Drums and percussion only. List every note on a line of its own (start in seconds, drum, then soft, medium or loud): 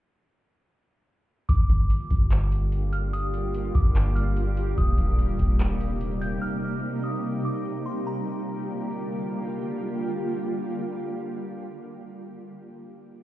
1.49 kick loud
1.49 closed hi-hat medium
1.69 kick medium
1.69 closed hi-hat medium
1.90 closed hi-hat medium
2.11 kick loud
2.11 closed hi-hat medium
2.31 clap loud
2.31 closed hi-hat medium
2.52 closed hi-hat medium
2.72 closed hi-hat medium
2.93 closed hi-hat medium
3.13 closed hi-hat medium
3.34 closed hi-hat medium
3.54 closed hi-hat medium
3.75 kick loud
3.75 closed hi-hat medium
3.96 clap loud
3.96 closed hi-hat medium
4.16 closed hi-hat medium
4.37 closed hi-hat medium
4.57 closed hi-hat medium
4.78 kick loud
4.78 closed hi-hat medium
4.98 kick medium
4.98 closed hi-hat medium
5.19 closed hi-hat medium
5.39 kick medium
5.39 closed hi-hat medium
5.60 clap loud
5.60 closed hi-hat medium
5.81 closed hi-hat medium
6.01 closed hi-hat medium
6.22 closed hi-hat medium